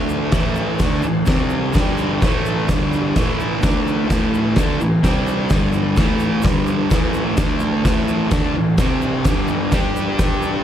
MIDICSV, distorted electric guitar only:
0, 0, Header, 1, 2, 480
1, 0, Start_track
1, 0, Key_signature, 0, "minor"
1, 0, Tempo, 469851
1, 339, Time_signature, 4, 2, 24, 8
1, 10866, End_track
2, 0, Start_track
2, 0, Title_t, "Distorted electric guitar"
2, 0, Program_c, 0, 30
2, 0, Note_on_c, 0, 50, 98
2, 0, Note_on_c, 0, 57, 91
2, 0, Note_on_c, 0, 62, 96
2, 330, Note_off_c, 0, 50, 0
2, 334, Note_off_c, 0, 57, 0
2, 337, Note_off_c, 0, 62, 0
2, 337, Note_on_c, 0, 45, 102
2, 338, Note_on_c, 0, 52, 122
2, 349, Note_on_c, 0, 57, 106
2, 812, Note_off_c, 0, 45, 0
2, 813, Note_off_c, 0, 52, 0
2, 818, Note_off_c, 0, 57, 0
2, 823, Note_on_c, 0, 50, 90
2, 829, Note_on_c, 0, 57, 99
2, 844, Note_on_c, 0, 62, 107
2, 1055, Note_off_c, 0, 50, 0
2, 1057, Note_off_c, 0, 57, 0
2, 1061, Note_on_c, 0, 52, 79
2, 1066, Note_off_c, 0, 62, 0
2, 1071, Note_on_c, 0, 45, 56
2, 1254, Note_off_c, 0, 52, 0
2, 1259, Note_off_c, 0, 45, 0
2, 1290, Note_on_c, 0, 48, 93
2, 1296, Note_on_c, 0, 55, 86
2, 1313, Note_on_c, 0, 60, 89
2, 1767, Note_on_c, 0, 43, 89
2, 1773, Note_off_c, 0, 55, 0
2, 1781, Note_off_c, 0, 48, 0
2, 1781, Note_on_c, 0, 50, 92
2, 1782, Note_off_c, 0, 60, 0
2, 1786, Note_on_c, 0, 55, 110
2, 2249, Note_off_c, 0, 43, 0
2, 2256, Note_off_c, 0, 50, 0
2, 2259, Note_off_c, 0, 55, 0
2, 2269, Note_on_c, 0, 45, 91
2, 2279, Note_on_c, 0, 52, 97
2, 2290, Note_on_c, 0, 57, 115
2, 2728, Note_on_c, 0, 43, 99
2, 2737, Note_off_c, 0, 45, 0
2, 2737, Note_off_c, 0, 52, 0
2, 2741, Note_on_c, 0, 50, 95
2, 2742, Note_on_c, 0, 55, 108
2, 2751, Note_off_c, 0, 57, 0
2, 3211, Note_off_c, 0, 43, 0
2, 3217, Note_off_c, 0, 50, 0
2, 3217, Note_off_c, 0, 55, 0
2, 3230, Note_on_c, 0, 45, 93
2, 3237, Note_on_c, 0, 52, 94
2, 3237, Note_on_c, 0, 57, 86
2, 3684, Note_off_c, 0, 45, 0
2, 3688, Note_on_c, 0, 50, 86
2, 3692, Note_off_c, 0, 57, 0
2, 3700, Note_off_c, 0, 52, 0
2, 3704, Note_on_c, 0, 57, 100
2, 3708, Note_on_c, 0, 62, 97
2, 4171, Note_off_c, 0, 50, 0
2, 4175, Note_on_c, 0, 45, 102
2, 4179, Note_off_c, 0, 57, 0
2, 4181, Note_off_c, 0, 62, 0
2, 4188, Note_on_c, 0, 52, 105
2, 4193, Note_on_c, 0, 57, 110
2, 4654, Note_off_c, 0, 45, 0
2, 4661, Note_off_c, 0, 52, 0
2, 4664, Note_off_c, 0, 57, 0
2, 4669, Note_on_c, 0, 50, 91
2, 4675, Note_on_c, 0, 57, 110
2, 4684, Note_on_c, 0, 62, 103
2, 4900, Note_off_c, 0, 50, 0
2, 4904, Note_off_c, 0, 57, 0
2, 4904, Note_on_c, 0, 45, 57
2, 4909, Note_off_c, 0, 62, 0
2, 4917, Note_on_c, 0, 52, 72
2, 5098, Note_off_c, 0, 45, 0
2, 5104, Note_off_c, 0, 52, 0
2, 5142, Note_on_c, 0, 48, 82
2, 5149, Note_on_c, 0, 55, 90
2, 5157, Note_on_c, 0, 60, 102
2, 5618, Note_off_c, 0, 48, 0
2, 5621, Note_off_c, 0, 55, 0
2, 5625, Note_off_c, 0, 60, 0
2, 5632, Note_on_c, 0, 43, 96
2, 5640, Note_on_c, 0, 50, 91
2, 5654, Note_on_c, 0, 55, 110
2, 6091, Note_off_c, 0, 50, 0
2, 6095, Note_on_c, 0, 45, 96
2, 6101, Note_off_c, 0, 55, 0
2, 6102, Note_off_c, 0, 43, 0
2, 6105, Note_on_c, 0, 52, 113
2, 6109, Note_on_c, 0, 57, 104
2, 6574, Note_off_c, 0, 45, 0
2, 6579, Note_off_c, 0, 52, 0
2, 6579, Note_on_c, 0, 43, 104
2, 6580, Note_off_c, 0, 57, 0
2, 6581, Note_on_c, 0, 50, 106
2, 6594, Note_on_c, 0, 55, 109
2, 7044, Note_off_c, 0, 50, 0
2, 7047, Note_off_c, 0, 55, 0
2, 7048, Note_on_c, 0, 45, 93
2, 7051, Note_on_c, 0, 52, 96
2, 7055, Note_off_c, 0, 43, 0
2, 7057, Note_on_c, 0, 57, 94
2, 7524, Note_off_c, 0, 45, 0
2, 7528, Note_off_c, 0, 57, 0
2, 7528, Note_on_c, 0, 50, 87
2, 7531, Note_off_c, 0, 52, 0
2, 7540, Note_on_c, 0, 57, 99
2, 7540, Note_on_c, 0, 62, 99
2, 8009, Note_off_c, 0, 50, 0
2, 8010, Note_off_c, 0, 57, 0
2, 8013, Note_on_c, 0, 45, 104
2, 8015, Note_off_c, 0, 62, 0
2, 8019, Note_on_c, 0, 52, 108
2, 8022, Note_on_c, 0, 57, 109
2, 8471, Note_off_c, 0, 45, 0
2, 8475, Note_off_c, 0, 57, 0
2, 8475, Note_on_c, 0, 50, 104
2, 8483, Note_off_c, 0, 52, 0
2, 8487, Note_on_c, 0, 57, 106
2, 8502, Note_on_c, 0, 62, 113
2, 8722, Note_off_c, 0, 50, 0
2, 8727, Note_off_c, 0, 57, 0
2, 8735, Note_off_c, 0, 62, 0
2, 8736, Note_on_c, 0, 45, 58
2, 8746, Note_on_c, 0, 52, 72
2, 8931, Note_off_c, 0, 45, 0
2, 8936, Note_off_c, 0, 52, 0
2, 8983, Note_on_c, 0, 55, 93
2, 8985, Note_on_c, 0, 48, 96
2, 9000, Note_on_c, 0, 60, 100
2, 9454, Note_off_c, 0, 55, 0
2, 9455, Note_off_c, 0, 48, 0
2, 9457, Note_on_c, 0, 43, 101
2, 9462, Note_off_c, 0, 60, 0
2, 9468, Note_on_c, 0, 50, 91
2, 9476, Note_on_c, 0, 55, 101
2, 9919, Note_off_c, 0, 55, 0
2, 9930, Note_off_c, 0, 43, 0
2, 9931, Note_on_c, 0, 55, 93
2, 9935, Note_off_c, 0, 50, 0
2, 9939, Note_on_c, 0, 62, 101
2, 9952, Note_on_c, 0, 67, 124
2, 10866, Note_off_c, 0, 55, 0
2, 10866, Note_off_c, 0, 62, 0
2, 10866, Note_off_c, 0, 67, 0
2, 10866, End_track
0, 0, End_of_file